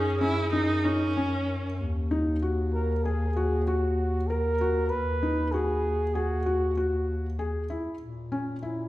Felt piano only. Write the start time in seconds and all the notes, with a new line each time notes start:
0.21 C#4
0.53 D#4
0.85 D#4
1.17 C#4
2.11 D#4
2.42 F#4
3.05 G#4
3.37 F#4
3.67 F#4
4.30 A#4
4.61 F#4
5.23 D#4
5.54 F#4
6.15 G#4
6.46 F#4
6.77 F#4
7.39 G#4
7.70 E4
8.32 C#4
8.63 E4